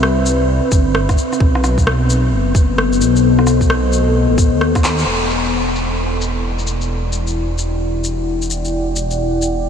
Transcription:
Already playing: C2 C4 B4 D5 E5
0.03 cross-stick
0.26 shaker
0.72 G1, kick, shaker
0.95 cross-stick
1.09 kick, cross-stick, shaker
1.18 shaker
1.33 cross-stick, shaker
1.40 B1 B3, kick
1.55 cross-stick
1.60 A4, cross-stick, shaker
1.78 kick, shaker
1.84 D#5, cross-stick
1.92 C5
2.10 shaker
2.32 F#1
2.55 kick, shaker
2.78 cross-stick
2.93 shaker
3.00 B1, shaker
3.16 shaker
3.39 cross-stick
3.47 cross-stick, shaker
3.61 kick, shaker
3.70 cross-stick
3.93 shaker
4.30 A1
4.38 kick, shaker
4.52 D#2
4.61 cross-stick
4.75 kick, cross-stick, shaker
4.84 clap, shaker
4.99 shaker
5.06 E1 E4
5.22 D5
5.28 F#5, shaker
5.44 shaker
5.61 G5
5.76 shaker
6.21 shaker
6.59 shaker
6.67 shaker
6.81 shaker
7.12 shaker
7.27 shaker
7.58 shaker
8.04 shaker
8.42 shaker
8.50 shaker
8.65 shaker
8.96 shaker
9.11 shaker
9.42 shaker

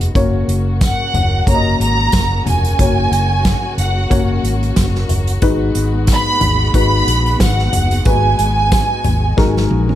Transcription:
Already playing: G#3 B3 D#4 F#4 B4
0.01 closed hi-hat
0.15 F#1 C#3 A#3 C#4 F#4 C#5, kick, closed hi-hat
0.48 F#1, closed hi-hat
0.81 F#5, kick, snare, closed hi-hat, tambourine
1.14 F#1, closed hi-hat, floor tom
1.47 F#1 A#3 C#4 F#4 C#5 A#5, kick, closed hi-hat
1.55 D#5
1.80 G#1 A#5, closed hi-hat
2.12 F#1, kick, snare, closed hi-hat, tambourine
2.45 F1 G#5, closed hi-hat, floor tom
2.65 closed hi-hat
2.79 F#1 A#3 C#4 F#4 C#5, kick, closed hi-hat
3.11 F#1, closed hi-hat
3.45 kick, snare, closed hi-hat, tambourine
3.78 F#1 F#5, closed hi-hat
4.10 F#1 A#3 C#4 F#4 C#5, kick, closed hi-hat
4.43 G#1, closed hi-hat
4.63 closed hi-hat
4.76 F#1, kick, snare, closed hi-hat, tambourine
4.95 snare
5.09 F#1, closed hi-hat, floor tom
5.27 closed hi-hat
5.42 G#1 G#2 G#3 B3 D#4 F#4 B4, kick, closed hi-hat
5.75 G#1, closed hi-hat
6.07 kick, snare, closed hi-hat, tambourine
6.12 B5
6.41 G#1, closed hi-hat, floor tom
6.74 G#1 G#3 D#4 F#4 B4 B5, kick, closed hi-hat
7.07 A#1, closed hi-hat
7.26 closed hi-hat
7.40 G#1 F#5, kick, snare, closed hi-hat, tambourine
7.59 snare
7.73 F#1, closed hi-hat, floor tom
7.91 closed hi-hat
8.05 G#1 G#2 G#3 D#4 F#4 B4 G#5, kick, closed hi-hat
8.39 G#1, closed hi-hat
8.72 kick, snare, closed hi-hat, tambourine
9.04 G#1, closed hi-hat, floor tom
9.37 G#1 G#3 D#4 F#4 A#4, kick, snare
9.57 snare
9.71 A#1, high tom
9.89 high tom

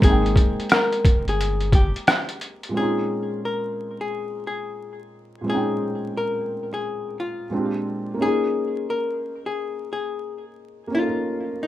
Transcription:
Already playing: G#3
0.00 G#1 A#3 C4, kick, closed hi-hat
0.04 D#4 G#4
0.10 G5
0.26 closed hi-hat
0.36 kick, closed hi-hat
0.60 closed hi-hat
0.70 A#4, cross-stick, closed hi-hat
0.92 closed hi-hat
1.05 kick, closed hi-hat
1.27 G1 G#4, closed hi-hat
1.41 closed hi-hat
1.60 closed hi-hat
1.72 G4, kick, closed hi-hat
1.96 closed hi-hat
2.07 cross-stick, closed hi-hat
2.29 closed hi-hat
2.41 closed hi-hat
2.63 closed hi-hat
2.69 A#2 G#3
2.74 C4 C#4 G#4
2.80 D#4 F4
3.45 A#4
4.01 G#4
4.47 G#4
5.41 A#2 G#3
5.46 C4 C#4 G#4
5.52 D#4 G5
6.17 A#4
6.74 G#4
7.20 F4
7.50 A#2 G#3 C4
7.54 D4 F4 G4
8.14 A#3 C#4
8.21 D#4 F4 G#4
8.28 G#4
8.90 A#4
9.46 G#4
9.93 G#4
10.87 A#3 C#4
10.94 D#4 F4
11.01 A4
11.07 A#4
11.63 D#4

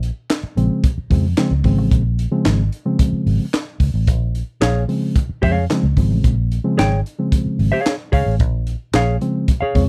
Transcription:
0.03 closed hi-hat
0.30 snare, clap, closed hi-hat
0.43 muted fingered electric bass stroke
0.57 A#1 C#3 F3 G#3 C4, closed hi-hat
0.84 kick, closed hi-hat
0.98 muted fingered electric bass stroke
1.10 F2 C#3 F3 G#3 C4, kick, open hi-hat
1.37 C#3 F3 G#3 C4, snare, clap, closed hi-hat
1.51 C#2
1.64 G#1 C#3 F3 G#3 C4, kick, open hi-hat
1.78 A1
1.91 A#1, kick, closed hi-hat
2.19 closed hi-hat
2.32 C#3 F3 G#3 C4
2.45 G#1, snare, clap, closed hi-hat
2.72 closed hi-hat
2.85 C#3 F3 G#3 C4
2.99 kick, closed hi-hat
3.12 muted fingered electric bass stroke
3.26 G#1, open hi-hat
3.53 snare, clap, closed hi-hat
3.80 C#2, kick, open hi-hat
3.94 A1
4.07 A#1, kick, closed hi-hat
4.35 closed hi-hat
4.61 A#1 G#4 C#5 F5, snare, clap, closed hi-hat
4.88 C#3 F3 G#3 C4, open hi-hat
5.16 kick, closed hi-hat
5.29 muted fingered electric bass stroke
5.42 F2 C#3 F3 G#3 C4 G#4 C#5 F5, kick, open hi-hat
5.70 C#3 F3 G#3 C4, snare, clap, closed hi-hat
5.83 C#2
5.97 G#1 C#3 F3 G#3 C4, kick, open hi-hat
6.11 A1
6.24 A#1, kick, closed hi-hat
6.52 closed hi-hat
6.64 C#3 F3 G#3 C4
6.78 G#1 G#4 C#5 G5, snare, clap, closed hi-hat
7.06 closed hi-hat
7.19 C#3 F3 G#3 C4
7.32 kick, closed hi-hat
7.46 muted fingered electric bass stroke
7.59 G#1, open hi-hat
7.72 G#4 C#5 F5
7.86 snare, clap, closed hi-hat
8.12 C#2 G#4 C#5 F5, kick, open hi-hat
8.26 A1
8.40 A#1, kick, closed hi-hat
8.67 closed hi-hat
8.93 A#1 G#4 C#5 F5, snare, clap, closed hi-hat
9.21 C#3 F3 G#3 C4, closed hi-hat
9.48 kick, closed hi-hat
9.61 G#4 C#5 F5, muted fingered electric bass stroke
9.75 F2 C#3 F3 G#3 C4 C#5, kick, open hi-hat

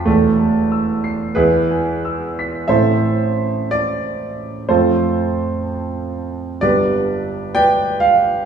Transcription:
0.05 E1 E2 A3
0.39 A5
0.72 E6
1.04 C7
1.35 E2 E4 G#4 B4
1.71 G#5
2.05 E6
2.39 B6
2.68 A1 A3 C4 E4 A4 C5 E5
3.71 D5
4.69 F2 A3 C4 F4 A4 C5
6.61 G1 G3 B3 D4 G4 B4 D5
7.55 B4 D5 G5
8.00 F5

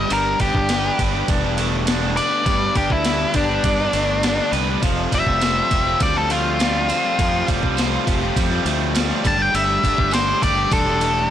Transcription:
Already playing: G3 G4 D#5
0.08 G1 G2 D3 G3 B3 D4, ride
0.13 A#4
0.39 G1 D3 G3 B3 D4 G4, kick, ride
0.54 G1 G3 B3 D4, kick
0.69 G2 D3 G3 B3 D4 B4, snare, ride
0.98 G1 D3 G3 B3 D4 G4, kick, ride
1.14 G3 B3 D4
1.28 E1 D4, kick, ride
1.45 G3 B3 D4
1.58 D3 G3 A3 B3 D4, ride
1.87 G2 D3 G3 B3 D4, snare, ride
2.03 G3 B3 D4
2.17 D3 G3 B3 D4 B4 D5, ride
2.31 G3 B3 D4
2.45 G2 D3 G3 B3 D4, kick, ride
2.75 G1 D3 G3 B3 D4 G4, kick, ride
2.90 D2 G3 B3 D4 E4, kick
3.05 G2 D3 G3 B3 D4 B4, snare, ride
3.34 G1 D3 G3 B3 D4 G4, kick, ride
3.49 G3 B3 D4
3.64 G2 D4, kick, ride
3.79 G3 B3 D4
3.93 G1 D3 G3 A3 B3 D4, ride
4.23 G2 D3 G3 B3 D4, snare, ride
4.39 G3 B3 D4
4.52 C2 D3 G3 B3 D4 B4, ride
4.69 G3 B3 D4
4.82 F1 F3 A3 C4 F4, kick, ride
5.11 F1 F3 G3 A3 C4 F4 E5, kick, ride, tambourine
5.26 F1 A3 C4 F4, kick
5.41 F3 A3 C4 F4 C5, snare, ride, tambourine
5.71 F1 F3 A3 C4 F4 G4, kick, ride
5.86 A3 C4 F4
6.00 D2 G3 D5, kick, ride, tambourine
6.15 A3 C4 F4 A4
6.30 F3 A3 C4 F4, ride, tambourine
6.59 F3 G3 A3 C4 F4, snare, ride, tambourine
6.75 A3 C4 F4
6.89 F3 A3 C4 F4 C5, ride, tambourine
7.04 A3 C4 F4
7.18 F2 F3 A3 C4 F4, kick, ride
7.46 F1 F3 G3 A3 C4 F4, kick, ride, tambourine
7.62 C2 A3 C4 F4, kick
7.77 F3 A3 C4 F4 C5, snare, ride, tambourine
8.06 F1 F3 A3 C4 F4 G4, kick, ride
8.22 A3 C4 F4
8.36 F2 G3, kick, ride, tambourine
8.51 A3 C4 F4
8.64 D2 F3 A3 C4 F4, ride, tambourine
8.94 F3 G3 A3 C4 F4, snare, ride, tambourine
9.09 A3 C4 F4
9.23 G1 G3 A3 D4 G4 A5, kick, ride, tambourine
9.38 A3 D4 G4
9.42 G5
9.53 G1 G3 A3 D4 G4 E5, ride
9.82 G1 G3 A3 D4 G4, kick, ride, tambourine
9.97 G1 A3 D4 G4, kick
10.11 G3 A3 D4 G4 C5 D5, snare, ride, tambourine
10.41 G1 G3 A3 D4 G4 D5, kick, ride
10.57 A3 D4 G4
10.71 E1 D4 A4, kick, ride, tambourine
10.85 A3 D4 G4
11.00 G3 A3 D4 G4, ride

